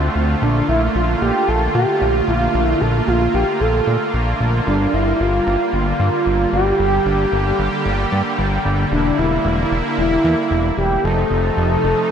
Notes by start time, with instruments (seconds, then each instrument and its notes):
Already playing: supersaw synth D3 A3 C4 F4
0.15 analog synth bass D2
0.42 analog synth bass A#1, supersaw synth A#3, analog synth lead D4
0.69 analog synth bass A#1, analog synth lead E4
0.95 analog synth bass A#1, analog synth lead F4
1.22 analog synth bass A#1, analog synth lead G4
1.48 analog synth bass A#1, analog synth lead A4
1.75 analog synth bass A#2, analog synth lead G4
2.01 analog synth bass A#1
2.28 analog synth bass A#1, analog synth lead F4
2.54 analog synth bass A#1
2.64 analog synth lead E4
2.81 analog synth bass A#1, analog synth lead A4
3.08 analog synth bass A#1, analog synth lead F4
3.34 analog synth bass A#1, analog synth lead G4
3.61 analog synth bass A#1, analog synth lead A4
3.87 analog synth bass A#2
4.14 analog synth bass A#1
4.40 analog synth bass A#1
4.67 analog synth bass G1, supersaw synth D3 G3, analog synth lead D4
4.94 analog synth bass G1, analog synth lead E4
5.20 analog synth bass G1, analog synth lead F4
5.47 analog synth bass G1
5.73 analog synth bass G1, analog synth lead F4
6.00 analog synth bass G2
6.26 analog synth bass G1
6.53 analog synth bass G1, analog synth lead G4
6.79 analog synth bass G1, supersaw synth G4
7.06 analog synth bass G1
7.32 analog synth bass G1
7.59 analog synth bass G1
7.86 analog synth bass G1
8.12 analog synth bass G2
8.39 analog synth bass G1
8.65 analog synth bass G1
8.92 analog synth bass E1, supersaw synth A#3 E4, analog synth lead D4
9.18 analog synth bass E1, analog synth lead E4
9.45 analog synth bass E1
9.71 analog synth bass E1
9.98 analog synth bass E1, analog synth lead E4
10.24 analog synth bass E2
10.51 analog synth bass E1
10.77 analog synth bass E1, analog synth lead G4
11.04 analog synth bass F1, supersaw synth C3 F3 A3 D#4, analog synth lead A4
11.31 analog synth bass F1
11.57 analog synth bass F1
11.84 analog synth bass F1